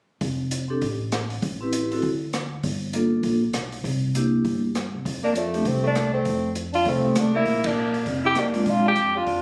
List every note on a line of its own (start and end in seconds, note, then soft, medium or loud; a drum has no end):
0.21 0.79 F1 medium
0.21 kick soft
0.21 open hi-hat soft
0.51 closed hi-hat soft
0.68 0.80 C4 medium
0.68 0.80 D4 soft
0.68 0.81 G4 medium
0.68 0.81 A4 medium
0.81 1.39 A1 medium
0.81 kick soft
0.81 open hi-hat soft
1.12 cross-stick soft
1.12 closed hi-hat soft
1.30 open hi-hat soft
1.42 1.99 A1 medium
1.42 kick soft
1.42 open hi-hat soft
1.61 1.89 C4 medium
1.61 1.90 E4 soft
1.61 1.90 G4 soft
1.61 1.90 B4 medium
1.73 closed hi-hat soft
1.91 2.02 C4 soft
1.91 2.02 E4 soft
1.91 2.02 F#4 soft
1.91 2.03 A4 medium
1.91 open hi-hat soft
2.02 2.60 D2 medium
2.02 kick soft
2.02 open hi-hat soft
2.33 cross-stick medium
2.33 closed hi-hat soft
2.63 3.21 G1 medium
2.63 kick soft
2.63 open hi-hat soft
2.93 3.38 A#3 medium
2.93 3.39 D4 soft
2.93 3.39 F4 soft
2.93 3.39 A4 medium
2.93 closed hi-hat soft
3.23 3.51 A#1 medium
3.23 kick soft
3.23 open hi-hat soft
3.53 3.81 B1 medium
3.53 cross-stick soft
3.53 closed hi-hat soft
3.72 open hi-hat soft
3.84 4.41 C2 medium
3.84 kick soft
3.84 open hi-hat soft
4.14 4.59 A#3 medium
4.14 4.60 D4 medium
4.14 4.60 E4 soft
4.14 4.60 G4 medium
4.14 closed hi-hat soft
4.45 4.90 G1 medium
4.45 kick soft
4.45 open hi-hat soft
4.75 cross-stick soft
4.75 closed hi-hat soft
4.94 5.04 C2 medium
5.05 5.62 F2 medium
5.05 kick soft
5.05 open hi-hat soft
5.24 5.36 A#3 medium
5.24 5.39 D4 medium
5.35 5.68 F3 soft
5.35 5.69 A3 medium
5.35 closed hi-hat soft
5.53 5.64 A3 medium
5.53 5.64 C4 soft
5.53 5.64 D4 soft
5.53 5.64 G4 medium
5.53 open hi-hat soft
5.65 6.22 C2 medium
5.65 5.83 A3 medium
5.65 5.85 C4 medium
5.65 kick soft
5.65 open hi-hat soft
5.83 6.11 A3 medium
5.83 6.13 D4 loud
5.95 cross-stick medium
5.95 closed hi-hat soft
6.14 6.53 A3 medium
6.14 6.52 C4 medium
6.25 6.83 F2 medium
6.25 kick soft
6.25 open hi-hat soft
6.55 closed hi-hat soft
6.73 6.88 D4 medium
6.73 6.91 F4 medium
6.73 open hi-hat soft
6.85 7.14 C2 medium
6.85 7.17 A3 medium
6.85 kick soft
6.85 open hi-hat soft
6.89 7.21 C4 medium
7.04 7.44 A3 medium
7.04 7.44 C4 soft
7.04 7.44 D#4 soft
7.04 7.44 G4 medium
7.15 7.44 C2 medium
7.15 7.34 A3 medium
7.15 cross-stick medium
7.15 closed hi-hat medium
7.20 7.35 D4 medium
7.35 7.64 A#3 medium
7.35 7.68 E4 medium
7.45 8.03 A#1 medium
7.45 kick soft
7.45 open hi-hat soft
7.64 8.06 A#3 medium
7.64 8.07 D4 medium
7.64 kick medium
7.64 ride medium
7.94 open hi-hat soft
8.06 8.34 F1 medium
8.06 kick soft
8.06 open hi-hat soft
8.25 8.38 E4 medium
8.25 8.41 G4 medium
8.35 8.64 F2 medium
8.35 8.67 A#3 medium
8.35 cross-stick soft
8.35 closed hi-hat soft
8.39 8.71 D4 medium
8.52 8.93 G#3 medium
8.52 8.94 C4 medium
8.52 8.94 D4 medium
8.52 8.94 F4 medium
8.52 open hi-hat soft
8.66 8.94 A#1 medium
8.66 8.85 D4 medium
8.66 kick soft
8.66 open hi-hat soft
8.70 8.87 F4 medium
8.86 9.14 D4 medium
8.86 9.15 G4 loud
8.96 9.24 F2 medium
8.96 closed hi-hat soft
9.17 9.42 D4 medium
9.17 9.42 F4 medium
9.27 9.42 F2 medium
9.27 kick soft
9.27 open hi-hat soft